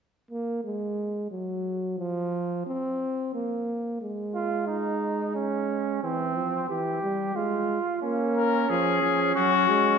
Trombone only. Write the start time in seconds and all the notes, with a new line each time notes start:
0.31 A#3
0.64 G#3
1.31 F#3
1.99 F3
2.67 C4
3.34 A#3
4.02 G#3
6.03 E3
6.36 F3
6.69 E3
7.03 G3
7.35 G#3
8.03 A#3
8.69 F3
9.02 F3
9.35 F#3
9.69 G#3